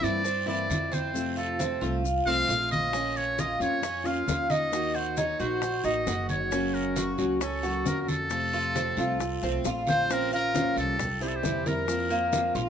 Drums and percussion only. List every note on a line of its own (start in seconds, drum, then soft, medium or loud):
0.04 high conga soft
0.04 short guiro medium
0.04 maracas soft
0.25 high conga soft
0.25 long guiro medium
0.25 maracas medium
0.49 high conga soft
0.49 maracas soft
0.70 high conga medium
0.70 short guiro medium
0.70 maracas medium
0.92 high conga medium
0.92 short guiro medium
0.92 maracas soft
1.14 high conga soft
1.14 long guiro medium
1.14 maracas medium
1.38 high conga soft
1.38 maracas soft
1.60 high conga loud
1.60 short guiro medium
1.60 maracas medium
1.81 high conga soft
1.81 short guiro medium
1.81 maracas soft
2.04 high conga soft
2.04 long guiro medium
2.04 maracas medium
2.28 high conga soft
2.28 maracas soft
2.48 high conga soft
2.48 short guiro medium
2.48 maracas medium
2.70 high conga medium
2.70 short guiro medium
2.70 maracas soft
2.93 high bongo medium
2.93 high conga soft
2.93 long guiro medium
2.93 maracas medium
3.16 high conga soft
3.16 maracas soft
3.38 high bongo medium
3.38 high conga loud
3.38 short guiro medium
3.38 maracas medium
3.61 high bongo soft
3.61 high conga soft
3.61 short guiro medium
3.61 maracas soft
3.83 high bongo medium
3.83 high conga soft
3.83 long guiro medium
3.83 maracas medium
4.06 high bongo soft
4.06 high conga soft
4.06 maracas soft
4.28 high bongo soft
4.28 low bongo medium
4.28 high conga medium
4.28 short guiro medium
4.28 maracas medium
4.50 high bongo soft
4.50 high conga medium
4.50 short guiro medium
4.50 maracas soft
4.73 high bongo medium
4.73 long guiro medium
4.73 maracas medium
4.94 high conga soft
4.94 maracas soft
5.17 high bongo medium
5.17 high conga loud
5.17 short guiro medium
5.17 maracas medium
5.40 high bongo soft
5.40 high conga soft
5.40 short guiro medium
5.40 maracas soft
5.62 high bongo medium
5.62 high conga soft
5.62 long guiro medium
5.62 maracas medium
5.84 high bongo soft
5.84 high conga soft
5.84 maracas soft
6.07 high bongo soft
6.07 low bongo medium
6.07 high conga soft
6.07 short guiro medium
6.07 maracas medium
6.29 high bongo soft
6.29 high conga medium
6.29 short guiro medium
6.29 maracas soft
6.51 high bongo medium
6.51 high conga soft
6.51 long guiro medium
6.51 maracas medium
6.74 high conga soft
6.74 maracas soft
6.96 high bongo medium
6.96 high conga medium
6.96 short guiro medium
6.96 maracas medium
7.18 high bongo soft
7.18 high conga soft
7.18 short guiro medium
7.18 maracas soft
7.40 high bongo medium
7.40 high conga soft
7.40 long guiro medium
7.40 maracas medium
7.63 high bongo soft
7.63 high conga soft
7.63 maracas soft
7.85 high bongo soft
7.85 low bongo medium
7.85 high conga medium
7.85 short guiro medium
7.85 maracas medium
8.08 high bongo soft
8.08 high conga medium
8.08 short guiro medium
8.08 maracas soft
8.30 high bongo medium
8.30 long guiro medium
8.30 maracas medium
8.53 high conga soft
8.53 maracas soft
8.75 high bongo medium
8.75 high conga medium
8.75 short guiro medium
8.75 maracas medium
8.97 high bongo soft
8.97 high conga soft
8.97 short guiro medium
8.97 maracas soft
9.20 high bongo medium
9.20 high conga soft
9.20 long guiro medium
9.20 maracas medium
9.43 high bongo soft
9.43 high conga soft
9.43 maracas soft
9.64 high bongo loud
9.64 high conga soft
9.64 short guiro medium
9.64 maracas medium
9.87 low bongo medium
9.87 high conga medium
9.87 short guiro medium
9.87 maracas soft
10.09 high bongo medium
10.09 high conga soft
10.09 long guiro medium
10.09 maracas medium
10.33 high conga soft
10.33 maracas soft
10.55 high bongo medium
10.55 high conga loud
10.55 short guiro medium
10.55 maracas medium
10.77 high bongo soft
10.77 high conga soft
10.77 short guiro medium
10.77 maracas soft
10.99 high bongo medium
10.99 high conga soft
10.99 low conga medium
10.99 long guiro medium
10.99 maracas medium
11.21 high bongo soft
11.21 high conga soft
11.21 maracas soft
11.43 high bongo soft
11.43 low bongo medium
11.43 high conga medium
11.43 short guiro medium
11.43 maracas medium
11.66 high bongo soft
11.66 high conga medium
11.66 short guiro medium
11.66 maracas soft
11.88 high bongo medium
11.88 long guiro medium
11.88 maracas medium
12.10 high conga soft
12.10 maracas soft
12.33 high bongo medium
12.33 high conga loud
12.33 short guiro medium
12.33 maracas medium
12.55 high bongo soft
12.55 high conga soft
12.55 short guiro medium
12.55 maracas soft